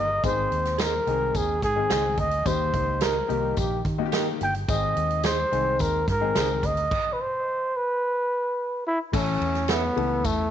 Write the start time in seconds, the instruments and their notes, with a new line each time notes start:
Already playing: fingered electric bass G1, trumpet D#5
0.23 fingered electric bass G#1, grand piano D#3 G#3 B3 D#4 G#4, trumpet C5, kick, closed hi-hat, tambourine
0.30 grand piano C4
0.51 fingered electric bass D#2, closed hi-hat
0.65 snare, closed hi-hat
0.78 clean electric guitar G#4 C5 D#5, trumpet A#4, snare, closed hi-hat, tambourine
1.07 fingered electric bass C2, grand piano D#3 G#3 C4 D#4 G#4, closed hi-hat
1.35 fingered electric bass D#2, trumpet G#4, kick, closed hi-hat, tambourine
1.62 fingered electric bass G#2, trumpet G#4, kick, snare, closed hi-hat
1.76 grand piano D#3 G#3 C4 D#4 G#4
1.90 fingered electric bass C#2, clean electric guitar G#4 C5 D#5, snare, closed hi-hat, tambourine
2.17 fingered electric bass D2, trumpet D#5, kick, closed hi-hat
2.31 closed hi-hat
2.45 fingered electric bass D#2, grand piano D#3 G3 A#3 D#4 G4, trumpet C5, kick, closed hi-hat, tambourine
2.74 fingered electric bass C#2, kick, closed hi-hat
3.01 clean electric guitar G4 A#4 D#5, trumpet A#4, snare, closed hi-hat, tambourine
3.28 fingered electric bass C2, grand piano D#3 G3 A#3 D#4 G4, closed hi-hat
3.57 fingered electric bass A#1, trumpet G4, kick, closed hi-hat, tambourine
3.85 fingered electric bass D#3, kick, closed hi-hat
3.98 grand piano D#3 G3 A#3 D#4 F#4
4.06 grand piano G4
4.12 clean electric guitar G4 A#4 D#5, snare, closed hi-hat, tambourine
4.41 fingered electric bass G1, trumpet G5, closed hi-hat
4.54 closed hi-hat
4.68 fingered electric bass G#1, grand piano D#3 G#3 C4 D#4 G#4, trumpet D#5, kick, closed hi-hat, tambourine
4.96 fingered electric bass D#2, closed hi-hat
5.10 closed hi-hat
5.23 clean electric guitar G#4 C5 D#5, trumpet C5, snare, closed hi-hat, tambourine
5.51 fingered electric bass C2, grand piano D#3 G#3 C4 D#4 G#4, closed hi-hat
5.79 fingered electric bass D#2, trumpet A#4, kick, closed hi-hat, tambourine
6.08 fingered electric bass G#2, trumpet A#4, kick, snare, closed hi-hat
6.21 grand piano D#3 G#3 C4 D#4 G#4
6.35 fingered electric bass C#2, clean electric guitar G#4 C5 D#5, snare, closed hi-hat, tambourine
6.63 fingered electric bass D2, trumpet D#5, kick, closed hi-hat
6.77 closed hi-hat
6.91 kick, crash
7.13 trumpet B4
7.21 trumpet C5
7.77 trumpet B4
8.87 trumpet E4
9.13 fingered electric bass A1, grand piano E3 A3 C#4 E4 A4, trumpet C#4, kick, crash, tambourine
9.41 fingered electric bass E2, ride
9.55 snare, ride
9.68 trumpet B3, clean electric guitar A4 C#5 E5, snare, ride, tambourine
9.96 fingered electric bass C#2, grand piano E3 A3 C#4 E4 A4, ride
10.25 fingered electric bass E2, trumpet A3, kick, ride, tambourine